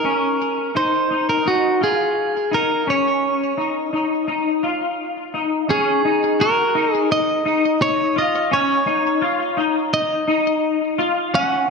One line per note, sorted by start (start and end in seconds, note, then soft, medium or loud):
0.00 0.76 A#4 medium
0.04 0.74 C#4 medium
0.75 1.09 D#4 medium
0.75 1.29 C5 medium
1.10 1.44 D#4 medium
1.29 1.47 A#4 medium
1.46 1.81 D#4 medium
1.46 1.83 F#4 medium
1.81 2.51 F4 medium
1.81 2.55 G#4 medium
2.51 2.87 D#4 medium
2.51 2.89 A#4 medium
2.87 3.57 C#4 medium
2.87 5.31 C#5 medium
3.57 3.92 D#4 medium
3.93 4.26 D#4 medium
4.28 4.63 D#4 medium
4.63 5.34 F4 medium
5.34 5.69 D#4 medium
5.69 6.04 C#4 medium
5.69 6.42 G#4 medium
6.05 6.40 D#4 medium
6.40 6.75 F#4 medium
6.40 6.94 A#4 medium
6.75 7.44 D#4 medium
6.94 7.12 G#4 medium
7.12 7.82 D#5 loud
7.45 8.16 D#4 medium
7.82 8.18 C#5 loud
8.16 8.51 F4 medium
8.16 8.53 D#5 medium
8.51 8.86 C#4 loud
8.51 9.93 C#5 loud
8.86 9.22 D#4 medium
9.21 9.57 F4 medium
9.57 10.26 D#4 medium
9.94 10.95 D#5 medium
10.27 10.98 D#4 medium
10.98 11.34 F4 medium
11.34 11.69 C#4 medium
11.34 11.70 F#5 loud